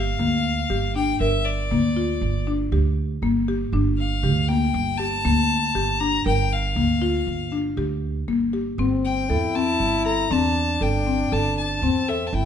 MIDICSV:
0, 0, Header, 1, 5, 480
1, 0, Start_track
1, 0, Tempo, 505902
1, 1140, Time_signature, 5, 2, 24, 8
1, 11814, End_track
2, 0, Start_track
2, 0, Title_t, "Violin"
2, 0, Program_c, 0, 40
2, 0, Note_on_c, 0, 77, 79
2, 904, Note_off_c, 0, 77, 0
2, 910, Note_on_c, 0, 79, 73
2, 1128, Note_off_c, 0, 79, 0
2, 1148, Note_on_c, 0, 76, 76
2, 1380, Note_on_c, 0, 74, 70
2, 1394, Note_off_c, 0, 76, 0
2, 2337, Note_off_c, 0, 74, 0
2, 3775, Note_on_c, 0, 77, 71
2, 4255, Note_on_c, 0, 79, 78
2, 4269, Note_off_c, 0, 77, 0
2, 4729, Note_on_c, 0, 81, 90
2, 4743, Note_off_c, 0, 79, 0
2, 5695, Note_on_c, 0, 82, 83
2, 5710, Note_off_c, 0, 81, 0
2, 5933, Note_off_c, 0, 82, 0
2, 5938, Note_on_c, 0, 79, 82
2, 6188, Note_on_c, 0, 77, 72
2, 6202, Note_off_c, 0, 79, 0
2, 7142, Note_off_c, 0, 77, 0
2, 8585, Note_on_c, 0, 79, 73
2, 9063, Note_on_c, 0, 81, 85
2, 9078, Note_off_c, 0, 79, 0
2, 9542, Note_off_c, 0, 81, 0
2, 9546, Note_on_c, 0, 82, 82
2, 9790, Note_on_c, 0, 81, 82
2, 9805, Note_off_c, 0, 82, 0
2, 10268, Note_on_c, 0, 79, 83
2, 10282, Note_off_c, 0, 81, 0
2, 10749, Note_on_c, 0, 81, 88
2, 10763, Note_off_c, 0, 79, 0
2, 10979, Note_off_c, 0, 81, 0
2, 10985, Note_on_c, 0, 81, 76
2, 11463, Note_on_c, 0, 76, 70
2, 11477, Note_off_c, 0, 81, 0
2, 11642, Note_on_c, 0, 81, 52
2, 11656, Note_off_c, 0, 76, 0
2, 11707, Note_on_c, 0, 79, 79
2, 11721, Note_off_c, 0, 81, 0
2, 11814, Note_off_c, 0, 79, 0
2, 11814, End_track
3, 0, Start_track
3, 0, Title_t, "Marimba"
3, 0, Program_c, 1, 12
3, 0, Note_on_c, 1, 67, 59
3, 158, Note_off_c, 1, 67, 0
3, 186, Note_on_c, 1, 58, 63
3, 608, Note_off_c, 1, 58, 0
3, 665, Note_on_c, 1, 67, 66
3, 875, Note_off_c, 1, 67, 0
3, 907, Note_on_c, 1, 62, 61
3, 1116, Note_off_c, 1, 62, 0
3, 1145, Note_on_c, 1, 70, 74
3, 1567, Note_off_c, 1, 70, 0
3, 1625, Note_on_c, 1, 58, 68
3, 1834, Note_off_c, 1, 58, 0
3, 1864, Note_on_c, 1, 65, 60
3, 2286, Note_off_c, 1, 65, 0
3, 2345, Note_on_c, 1, 62, 56
3, 2554, Note_off_c, 1, 62, 0
3, 2585, Note_on_c, 1, 67, 66
3, 3006, Note_off_c, 1, 67, 0
3, 3062, Note_on_c, 1, 58, 68
3, 3272, Note_off_c, 1, 58, 0
3, 3305, Note_on_c, 1, 67, 62
3, 3513, Note_off_c, 1, 67, 0
3, 3542, Note_on_c, 1, 62, 64
3, 3964, Note_off_c, 1, 62, 0
3, 4020, Note_on_c, 1, 67, 59
3, 4230, Note_off_c, 1, 67, 0
3, 4260, Note_on_c, 1, 58, 61
3, 4683, Note_off_c, 1, 58, 0
3, 4739, Note_on_c, 1, 67, 58
3, 4950, Note_off_c, 1, 67, 0
3, 4981, Note_on_c, 1, 58, 68
3, 5403, Note_off_c, 1, 58, 0
3, 5458, Note_on_c, 1, 67, 63
3, 5669, Note_off_c, 1, 67, 0
3, 5698, Note_on_c, 1, 62, 55
3, 5909, Note_off_c, 1, 62, 0
3, 5938, Note_on_c, 1, 70, 64
3, 6362, Note_off_c, 1, 70, 0
3, 6417, Note_on_c, 1, 58, 63
3, 6629, Note_off_c, 1, 58, 0
3, 6657, Note_on_c, 1, 65, 66
3, 7082, Note_off_c, 1, 65, 0
3, 7134, Note_on_c, 1, 62, 58
3, 7348, Note_off_c, 1, 62, 0
3, 7377, Note_on_c, 1, 67, 63
3, 7802, Note_off_c, 1, 67, 0
3, 7858, Note_on_c, 1, 58, 63
3, 8070, Note_off_c, 1, 58, 0
3, 8096, Note_on_c, 1, 67, 57
3, 8309, Note_off_c, 1, 67, 0
3, 8342, Note_on_c, 1, 60, 68
3, 8766, Note_off_c, 1, 60, 0
3, 8821, Note_on_c, 1, 69, 66
3, 9033, Note_off_c, 1, 69, 0
3, 9061, Note_on_c, 1, 60, 63
3, 9486, Note_off_c, 1, 60, 0
3, 9541, Note_on_c, 1, 69, 58
3, 9754, Note_off_c, 1, 69, 0
3, 9780, Note_on_c, 1, 60, 69
3, 10206, Note_off_c, 1, 60, 0
3, 10258, Note_on_c, 1, 69, 64
3, 10472, Note_off_c, 1, 69, 0
3, 10500, Note_on_c, 1, 60, 55
3, 10714, Note_off_c, 1, 60, 0
3, 10743, Note_on_c, 1, 69, 71
3, 11169, Note_off_c, 1, 69, 0
3, 11226, Note_on_c, 1, 60, 65
3, 11438, Note_off_c, 1, 60, 0
3, 11466, Note_on_c, 1, 69, 66
3, 11814, Note_off_c, 1, 69, 0
3, 11814, End_track
4, 0, Start_track
4, 0, Title_t, "French horn"
4, 0, Program_c, 2, 60
4, 8345, Note_on_c, 2, 60, 84
4, 8820, Note_on_c, 2, 64, 101
4, 8834, Note_off_c, 2, 60, 0
4, 9775, Note_on_c, 2, 62, 79
4, 9789, Note_off_c, 2, 64, 0
4, 11221, Note_off_c, 2, 62, 0
4, 11227, Note_on_c, 2, 60, 73
4, 11707, Note_on_c, 2, 64, 82
4, 11721, Note_off_c, 2, 60, 0
4, 11814, Note_off_c, 2, 64, 0
4, 11814, End_track
5, 0, Start_track
5, 0, Title_t, "Upright bass"
5, 0, Program_c, 3, 32
5, 0, Note_on_c, 3, 31, 77
5, 125, Note_off_c, 3, 31, 0
5, 186, Note_on_c, 3, 38, 86
5, 603, Note_off_c, 3, 38, 0
5, 662, Note_on_c, 3, 31, 70
5, 1080, Note_off_c, 3, 31, 0
5, 1141, Note_on_c, 3, 31, 80
5, 1625, Note_on_c, 3, 38, 78
5, 1639, Note_off_c, 3, 31, 0
5, 2041, Note_off_c, 3, 38, 0
5, 2100, Note_on_c, 3, 31, 81
5, 2518, Note_off_c, 3, 31, 0
5, 2580, Note_on_c, 3, 38, 84
5, 2998, Note_off_c, 3, 38, 0
5, 3056, Note_on_c, 3, 31, 73
5, 3475, Note_off_c, 3, 31, 0
5, 3534, Note_on_c, 3, 31, 81
5, 4012, Note_on_c, 3, 38, 85
5, 4027, Note_off_c, 3, 31, 0
5, 4433, Note_off_c, 3, 38, 0
5, 4498, Note_on_c, 3, 31, 86
5, 4916, Note_off_c, 3, 31, 0
5, 4983, Note_on_c, 3, 38, 85
5, 5399, Note_off_c, 3, 38, 0
5, 5455, Note_on_c, 3, 31, 74
5, 5875, Note_off_c, 3, 31, 0
5, 5938, Note_on_c, 3, 31, 90
5, 6414, Note_on_c, 3, 38, 79
5, 6428, Note_off_c, 3, 31, 0
5, 6834, Note_off_c, 3, 38, 0
5, 6894, Note_on_c, 3, 31, 79
5, 7315, Note_off_c, 3, 31, 0
5, 7373, Note_on_c, 3, 38, 82
5, 7794, Note_off_c, 3, 38, 0
5, 7854, Note_on_c, 3, 31, 66
5, 8276, Note_off_c, 3, 31, 0
5, 8332, Note_on_c, 3, 31, 85
5, 8820, Note_on_c, 3, 40, 79
5, 8834, Note_off_c, 3, 31, 0
5, 9240, Note_off_c, 3, 40, 0
5, 9299, Note_on_c, 3, 31, 76
5, 9720, Note_off_c, 3, 31, 0
5, 9779, Note_on_c, 3, 40, 86
5, 10200, Note_off_c, 3, 40, 0
5, 10255, Note_on_c, 3, 31, 77
5, 10679, Note_off_c, 3, 31, 0
5, 10741, Note_on_c, 3, 31, 81
5, 11215, Note_on_c, 3, 40, 81
5, 11230, Note_off_c, 3, 31, 0
5, 11639, Note_off_c, 3, 40, 0
5, 11696, Note_on_c, 3, 31, 81
5, 11814, Note_off_c, 3, 31, 0
5, 11814, End_track
0, 0, End_of_file